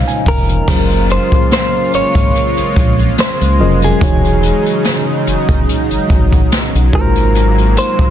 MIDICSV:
0, 0, Header, 1, 6, 480
1, 0, Start_track
1, 0, Tempo, 833333
1, 393, Time_signature, 4, 2, 24, 8
1, 4667, End_track
2, 0, Start_track
2, 0, Title_t, "Clean electric guitar"
2, 0, Program_c, 0, 27
2, 0, Note_on_c, 0, 73, 88
2, 136, Note_off_c, 0, 73, 0
2, 163, Note_on_c, 0, 70, 99
2, 641, Note_off_c, 0, 70, 0
2, 643, Note_on_c, 0, 72, 105
2, 875, Note_off_c, 0, 72, 0
2, 882, Note_on_c, 0, 72, 106
2, 1121, Note_off_c, 0, 72, 0
2, 1123, Note_on_c, 0, 73, 108
2, 1815, Note_off_c, 0, 73, 0
2, 1845, Note_on_c, 0, 72, 105
2, 2186, Note_off_c, 0, 72, 0
2, 2214, Note_on_c, 0, 68, 81
2, 2905, Note_off_c, 0, 68, 0
2, 4004, Note_on_c, 0, 70, 101
2, 4482, Note_off_c, 0, 70, 0
2, 4484, Note_on_c, 0, 72, 114
2, 4667, Note_off_c, 0, 72, 0
2, 4667, End_track
3, 0, Start_track
3, 0, Title_t, "Tine electric piano"
3, 0, Program_c, 1, 4
3, 0, Control_c, 1, 64, 127
3, 0, Note_on_c, 1, 56, 69
3, 0, Note_on_c, 1, 61, 74
3, 0, Note_on_c, 1, 63, 69
3, 0, Note_on_c, 1, 65, 69
3, 0, Note_on_c, 1, 73, 84
3, 0, Note_on_c, 1, 77, 76
3, 43, Note_on_c, 1, 80, 71
3, 370, Note_off_c, 1, 80, 0
3, 392, Note_on_c, 1, 54, 75
3, 393, Note_off_c, 1, 61, 0
3, 393, Note_on_c, 1, 61, 68
3, 395, Note_off_c, 1, 65, 0
3, 395, Note_on_c, 1, 65, 69
3, 397, Note_on_c, 1, 68, 69
3, 398, Note_on_c, 1, 70, 66
3, 400, Note_on_c, 1, 72, 80
3, 401, Control_c, 1, 64, 0
3, 403, Note_off_c, 1, 73, 0
3, 404, Note_off_c, 1, 56, 0
3, 404, Note_off_c, 1, 77, 0
3, 406, Note_off_c, 1, 63, 0
3, 516, Control_c, 1, 64, 127
3, 1153, Note_off_c, 1, 54, 0
3, 1154, Note_off_c, 1, 61, 0
3, 1155, Note_off_c, 1, 65, 0
3, 1156, Note_off_c, 1, 68, 0
3, 1156, Note_off_c, 1, 70, 0
3, 1157, Note_off_c, 1, 72, 0
3, 2070, Note_on_c, 1, 54, 76
3, 2071, Note_on_c, 1, 61, 73
3, 2073, Note_on_c, 1, 65, 71
3, 2075, Note_on_c, 1, 68, 67
3, 2076, Note_on_c, 1, 70, 75
3, 2078, Note_on_c, 1, 75, 86
3, 2265, Note_off_c, 1, 54, 0
3, 2266, Note_off_c, 1, 61, 0
3, 2266, Note_off_c, 1, 65, 0
3, 2268, Note_off_c, 1, 68, 0
3, 2268, Note_off_c, 1, 70, 0
3, 2269, Note_off_c, 1, 75, 0
3, 2312, Note_on_c, 1, 52, 71
3, 2313, Note_on_c, 1, 63, 70
3, 2317, Note_on_c, 1, 66, 69
3, 2318, Note_on_c, 1, 68, 68
3, 2319, Control_c, 1, 64, 0
3, 2320, Note_on_c, 1, 73, 81
3, 2414, Control_c, 1, 64, 127
3, 3073, Note_off_c, 1, 52, 0
3, 3074, Note_off_c, 1, 63, 0
3, 3076, Note_off_c, 1, 66, 0
3, 3076, Note_off_c, 1, 68, 0
3, 3077, Note_off_c, 1, 73, 0
3, 3992, Note_on_c, 1, 56, 83
3, 3993, Note_on_c, 1, 63, 77
3, 3996, Note_on_c, 1, 65, 81
3, 3997, Note_on_c, 1, 66, 73
3, 3999, Note_on_c, 1, 70, 76
3, 4001, Control_c, 1, 64, 0
3, 4001, Note_on_c, 1, 71, 74
3, 4037, Note_off_c, 1, 71, 0
3, 4038, Note_on_c, 1, 72, 91
3, 4095, Control_c, 1, 64, 127
3, 4667, Note_off_c, 1, 56, 0
3, 4667, Note_off_c, 1, 63, 0
3, 4667, Note_off_c, 1, 65, 0
3, 4667, Note_off_c, 1, 66, 0
3, 4667, Note_off_c, 1, 70, 0
3, 4667, Note_off_c, 1, 72, 0
3, 4667, End_track
4, 0, Start_track
4, 0, Title_t, "Analog synth pad"
4, 0, Program_c, 2, 89
4, 0, Note_on_c, 2, 46, 81
4, 0, Note_on_c, 2, 53, 75
4, 0, Note_on_c, 2, 63, 91
4, 368, Note_off_c, 2, 46, 0
4, 374, Note_off_c, 2, 53, 0
4, 375, Note_off_c, 2, 63, 0
4, 391, Note_on_c, 2, 49, 84
4, 391, Note_on_c, 2, 56, 79
4, 392, Note_on_c, 2, 65, 90
4, 393, Note_on_c, 2, 58, 78
4, 2293, Note_off_c, 2, 49, 0
4, 2293, Note_off_c, 2, 65, 0
4, 2294, Note_off_c, 2, 58, 0
4, 2313, Note_on_c, 2, 49, 89
4, 2314, Note_on_c, 2, 63, 99
4, 2315, Note_on_c, 2, 54, 79
4, 3969, Note_off_c, 2, 56, 0
4, 3976, Note_off_c, 2, 49, 0
4, 3977, Note_off_c, 2, 63, 0
4, 3995, Note_on_c, 2, 48, 86
4, 3995, Note_on_c, 2, 58, 79
4, 3995, Note_on_c, 2, 77, 97
4, 4667, Note_off_c, 2, 48, 0
4, 4667, Note_off_c, 2, 54, 0
4, 4667, Note_off_c, 2, 58, 0
4, 4667, Note_off_c, 2, 77, 0
4, 4667, End_track
5, 0, Start_track
5, 0, Title_t, "Analog synth bass"
5, 0, Program_c, 3, 38
5, 152, Note_on_c, 3, 29, 97
5, 339, Note_off_c, 3, 29, 0
5, 392, Note_on_c, 3, 30, 114
5, 680, Note_off_c, 3, 30, 0
5, 1116, Note_on_c, 3, 32, 48
5, 1167, Note_off_c, 3, 32, 0
5, 1241, Note_on_c, 3, 32, 91
5, 1328, Note_off_c, 3, 32, 0
5, 1485, Note_on_c, 3, 34, 53
5, 1528, Note_off_c, 3, 34, 0
5, 1593, Note_on_c, 3, 34, 94
5, 1780, Note_off_c, 3, 34, 0
5, 1966, Note_on_c, 3, 37, 95
5, 2077, Note_on_c, 3, 29, 103
5, 2085, Note_off_c, 3, 37, 0
5, 2262, Note_off_c, 3, 29, 0
5, 2312, Note_on_c, 3, 28, 110
5, 2601, Note_off_c, 3, 28, 0
5, 3037, Note_on_c, 3, 30, 50
5, 3087, Note_off_c, 3, 30, 0
5, 3162, Note_on_c, 3, 30, 94
5, 3248, Note_off_c, 3, 30, 0
5, 3407, Note_on_c, 3, 32, 50
5, 3450, Note_off_c, 3, 32, 0
5, 3515, Note_on_c, 3, 32, 82
5, 3701, Note_off_c, 3, 32, 0
5, 3887, Note_on_c, 3, 35, 103
5, 3972, Note_off_c, 3, 35, 0
5, 3994, Note_on_c, 3, 32, 117
5, 4469, Note_off_c, 3, 32, 0
5, 4667, End_track
6, 0, Start_track
6, 0, Title_t, "Drums"
6, 44, Note_on_c, 9, 42, 49
6, 102, Note_off_c, 9, 42, 0
6, 150, Note_on_c, 9, 46, 73
6, 151, Note_on_c, 9, 36, 90
6, 208, Note_off_c, 9, 46, 0
6, 209, Note_off_c, 9, 36, 0
6, 281, Note_on_c, 9, 42, 45
6, 339, Note_off_c, 9, 42, 0
6, 391, Note_on_c, 9, 36, 126
6, 391, Note_on_c, 9, 42, 76
6, 391, Note_on_c, 9, 49, 108
6, 448, Note_off_c, 9, 36, 0
6, 449, Note_off_c, 9, 42, 0
6, 449, Note_off_c, 9, 49, 0
6, 524, Note_on_c, 9, 42, 49
6, 582, Note_off_c, 9, 42, 0
6, 631, Note_on_c, 9, 42, 67
6, 688, Note_off_c, 9, 42, 0
6, 760, Note_on_c, 9, 36, 92
6, 760, Note_on_c, 9, 42, 53
6, 818, Note_off_c, 9, 36, 0
6, 818, Note_off_c, 9, 42, 0
6, 869, Note_on_c, 9, 42, 64
6, 875, Note_on_c, 9, 38, 116
6, 926, Note_off_c, 9, 42, 0
6, 933, Note_off_c, 9, 38, 0
6, 1113, Note_on_c, 9, 42, 74
6, 1171, Note_off_c, 9, 42, 0
6, 1239, Note_on_c, 9, 36, 104
6, 1239, Note_on_c, 9, 42, 61
6, 1297, Note_off_c, 9, 36, 0
6, 1297, Note_off_c, 9, 42, 0
6, 1355, Note_on_c, 9, 42, 79
6, 1412, Note_off_c, 9, 42, 0
6, 1479, Note_on_c, 9, 42, 50
6, 1537, Note_off_c, 9, 42, 0
6, 1591, Note_on_c, 9, 42, 71
6, 1592, Note_on_c, 9, 36, 107
6, 1649, Note_off_c, 9, 42, 0
6, 1650, Note_off_c, 9, 36, 0
6, 1723, Note_on_c, 9, 42, 48
6, 1780, Note_off_c, 9, 42, 0
6, 1831, Note_on_c, 9, 42, 82
6, 1835, Note_on_c, 9, 38, 116
6, 1888, Note_off_c, 9, 42, 0
6, 1892, Note_off_c, 9, 38, 0
6, 1964, Note_on_c, 9, 42, 50
6, 2022, Note_off_c, 9, 42, 0
6, 2200, Note_on_c, 9, 42, 70
6, 2258, Note_off_c, 9, 42, 0
6, 2311, Note_on_c, 9, 42, 87
6, 2312, Note_on_c, 9, 36, 126
6, 2368, Note_off_c, 9, 42, 0
6, 2369, Note_off_c, 9, 36, 0
6, 2444, Note_on_c, 9, 42, 48
6, 2502, Note_off_c, 9, 42, 0
6, 2551, Note_on_c, 9, 42, 68
6, 2609, Note_off_c, 9, 42, 0
6, 2681, Note_on_c, 9, 42, 55
6, 2739, Note_off_c, 9, 42, 0
6, 2789, Note_on_c, 9, 42, 64
6, 2796, Note_on_c, 9, 38, 121
6, 2847, Note_off_c, 9, 42, 0
6, 2853, Note_off_c, 9, 38, 0
6, 3036, Note_on_c, 9, 42, 75
6, 3093, Note_off_c, 9, 42, 0
6, 3160, Note_on_c, 9, 36, 106
6, 3162, Note_on_c, 9, 42, 61
6, 3218, Note_off_c, 9, 36, 0
6, 3220, Note_off_c, 9, 42, 0
6, 3276, Note_on_c, 9, 42, 76
6, 3334, Note_off_c, 9, 42, 0
6, 3401, Note_on_c, 9, 42, 51
6, 3458, Note_off_c, 9, 42, 0
6, 3512, Note_on_c, 9, 42, 67
6, 3513, Note_on_c, 9, 36, 108
6, 3569, Note_off_c, 9, 42, 0
6, 3571, Note_off_c, 9, 36, 0
6, 3643, Note_on_c, 9, 36, 94
6, 3645, Note_on_c, 9, 42, 51
6, 3701, Note_off_c, 9, 36, 0
6, 3702, Note_off_c, 9, 42, 0
6, 3753, Note_on_c, 9, 42, 84
6, 3757, Note_on_c, 9, 38, 117
6, 3811, Note_off_c, 9, 42, 0
6, 3814, Note_off_c, 9, 38, 0
6, 3887, Note_on_c, 9, 42, 49
6, 3945, Note_off_c, 9, 42, 0
6, 3993, Note_on_c, 9, 36, 110
6, 4051, Note_off_c, 9, 36, 0
6, 4121, Note_on_c, 9, 42, 74
6, 4179, Note_off_c, 9, 42, 0
6, 4233, Note_on_c, 9, 42, 87
6, 4290, Note_off_c, 9, 42, 0
6, 4366, Note_on_c, 9, 42, 47
6, 4423, Note_off_c, 9, 42, 0
6, 4473, Note_on_c, 9, 42, 69
6, 4531, Note_off_c, 9, 42, 0
6, 4602, Note_on_c, 9, 36, 96
6, 4602, Note_on_c, 9, 42, 50
6, 4660, Note_off_c, 9, 36, 0
6, 4660, Note_off_c, 9, 42, 0
6, 4667, End_track
0, 0, End_of_file